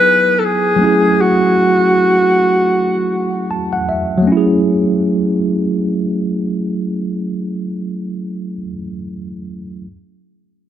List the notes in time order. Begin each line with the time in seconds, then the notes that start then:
Already playing: F#3 B3 D#4 E4 B4 G#5
0.39 A4
0.45 G#4
0.76 F#3 A3
0.81 C#4 E4
0.86 G#4
1.21 F#4
3.51 A5
3.73 F#5
3.89 E5
4.18 F#3
4.22 A3
4.27 C#4
4.32 E4
4.37 G#4